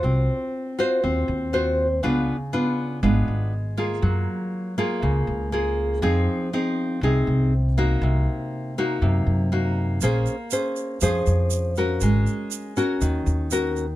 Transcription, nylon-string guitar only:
\new Staff \with { instrumentName = "Nylon-string guitar" } { \time 4/4 \key bes \minor \tempo 4 = 120 << { <f' ges' c''>4. <f' ges' c''>4. <f' ges' c''>8 r8 | <ces' d' f'>8 r8 <ces' d' f'>4 <ces' d' f'>4 r8 <bes f' aes'>8~ | <bes f' aes'>4. <bes f' aes'>4. <bes f' aes'>4 | <c' ees' aes'>4 <c' ees' aes'>4 <c' ees' aes'>4 r8 <bes ees' ges'>8~ |
<bes ees' ges'>4. <bes ees' ges'>4. <bes ees' ges'>4 | <des' aes' c''>8 r8 <des' aes' c''>4 <des' aes' c''>4. <des' ges' bes'>8~ | <des' ges' bes'>4. <des' ges' bes'>4. <des' ges' bes'>8 r8 | } \\ { c'2 c'2 | des2 aes2 | ges2 des2 | f2 c2 |
c2 c2 | bes2 f2 | aes2 ees2 | } >> }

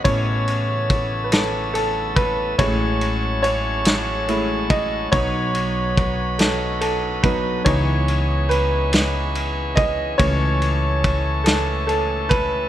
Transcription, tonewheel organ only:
<<
  \new Staff \with { instrumentName = "Tonewheel organ" } { \time 6/8 \key a \lydian \tempo 4. = 47 << { a'2. | a''2. | b'2. | gis'2. |
a'2. | } \\ { e'2.~ | e'2. | dis'2. | cis'2.~ |
cis'2. | } >> }
  \new Staff \with { instrumentName = "Tonewheel organ" } { \time 6/8 \key a \lydian << { b2. | cis'2. | b2.~ | b2. |
a2. | } \\ { cis2. | fis2.~ | fis2. | e2.~ |
e2. | } >> }
>>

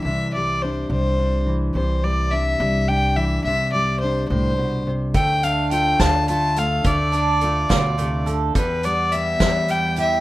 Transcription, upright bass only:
\new Staff \with { instrumentName = "Upright bass" } { \clef bass \time 6/8 \key c \major \tempo 4. = 71 c,4. c,4. | c,4. c,4. | c,4. c,4. | d,4. d,4. |
d,4. d,4. | e,4. e,4. | }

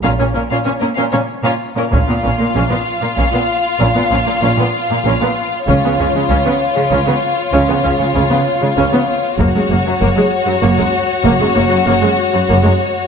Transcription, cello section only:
\new Staff \with { instrumentName = "Cello section" } { \clef bass \time 6/8 \key bes \phrygian \tempo 4. = 64 bes,16 bes,16 bes,16 bes,16 bes,16 bes,16 bes,16 bes,16 r16 bes,16 r16 bes,16 | bes,16 bes,16 bes,16 bes,16 bes,16 bes,16 r16 bes,16 bes,16 bes,16 r8 | bes,16 bes,16 bes,16 bes,16 bes,16 bes,16 r16 bes,16 bes,16 bes,16 r8 | des16 des16 des16 des16 des16 des16 r16 des16 des16 des16 r8 |
des16 des16 des16 des16 des16 des16 r16 des16 des16 des16 r8 | ges,16 ges,16 ges,16 ges,16 ges,16 ges,16 r16 ges,16 ges,16 ges,16 r8 | ges,16 ges,16 ges,16 ges,16 ges,16 ges,16 r16 ges,16 ges,16 ges,16 r8 | }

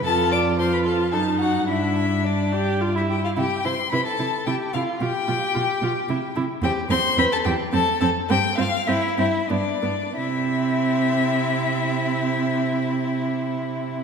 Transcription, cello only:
\new Staff \with { instrumentName = "Cello" } { \clef bass \time 3/4 \key c \major \tempo 4 = 107 f,2 fis,4 | g,2~ g,8 r8 | c8 c8 c8 c8 c8 c8 | b,8 b,8 b,8 b,8 c8 c8 |
e,8 e,8 e,8 e,8 f,8 f,8 | g,8 g,8 g,8 g,8 g,8 g,8 | c2.~ | c2. | }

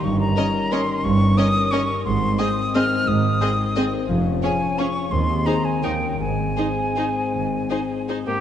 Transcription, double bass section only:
\new Staff \with { instrumentName = "Double bass section" } { \clef bass \time 3/4 \key aes \major \tempo 4 = 172 g,,4 r2 | g,,4 r2 | aes,,4 r2 | aes,,4 r2 |
f,,4 r2 | ees,4 r4 ees,4 | aes,,4 r2 | aes,,4 r2 | }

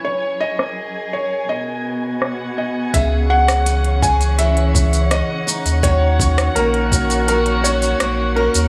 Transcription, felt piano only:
\new Staff \with { instrumentName = "Felt piano" } { \time 4/4 \key cis \dorian \tempo 4 = 83 cis''8 dis''4 cis''8 dis''4. dis''8 | e''8 fis''4 gis''8 e''4 dis''4 | cis''4 ais'4 ais'8 cis''4 ais'8 | }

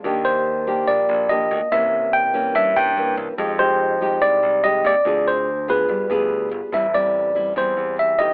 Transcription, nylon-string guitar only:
\new Staff \with { instrumentName = "Nylon-string guitar" } { \time 4/4 \key c \minor \tempo 4 = 144 << { <bes d' g'>4. <bes d' g'>4. <bes d' g'>8 r8 | <e bes des'>4. <e bes des'>4. <e bes des'>4 | <aes ees' g'>8 <aes ees' g'>4 <aes ees' g'>4. <aes ees' g'>8 r8 | <c' f' aes'>4 r8 <b f' aes'>4 <b f' aes'>4. |
\key a \minor <g c' e'>8 <g c' e'>4 <g c' e'>8 <g c' e'>4. <a dis' g'>8 | } \\ { ees2 bes,2 | c2 g,2 | f2 c2 | d2 g2 |
a,2 e2 | } >> }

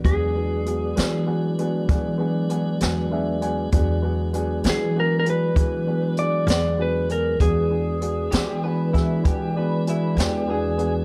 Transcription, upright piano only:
\new Staff \with { instrumentName = "Upright piano" } { \time 12/8 \key e \mixolydian \tempo 4. = 65 <b d' fis' gis'>8 <b d' fis' gis'>8 <b d' fis' gis'>8 <b d' fis' gis'>8 <b d' fis' gis'>8 <b d' fis' gis'>8 <b d' fis' gis'>8 <b d' fis' gis'>8 <b d' fis' gis'>8 <b d' fis' gis'>8 <b d' fis' gis' e''>8 <b d' fis' gis' gis''>8 | <b d' fis' gis'>8 <b d' fis' gis'>8 <b d' fis' gis'>8 <b d' fis' gis'>8 <b d' fis' gis'>8 <b d' fis' gis'>8 <b d' fis' gis'>8 <b d' fis' gis'>8 <b d' fis' gis'>8 <b d' fis' gis'>8 <b d' fis' gis'>8 <b d' fis' gis'>8 | <b d' fis' gis'>8 <b d' fis' gis'>8 <b d' fis' gis'>8 <b d' fis' gis'>8 <b d' fis' gis'>8 <b d' fis' gis'>8 <b d' fis' gis'>8 <b d' fis' gis'>8 <b d' fis' gis'>8 <b d' fis' gis'>8 <b d' fis' gis'>8 <b d' fis' gis'>8 | }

